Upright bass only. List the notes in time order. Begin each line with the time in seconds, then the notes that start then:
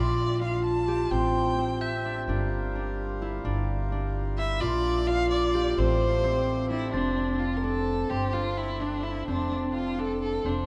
Already playing: A#1
1.12 A1
2.28 G1
3.45 G1
4.61 A#1
5.78 A1
6.93 F1
8.10 G1
9.28 F1
10.45 F1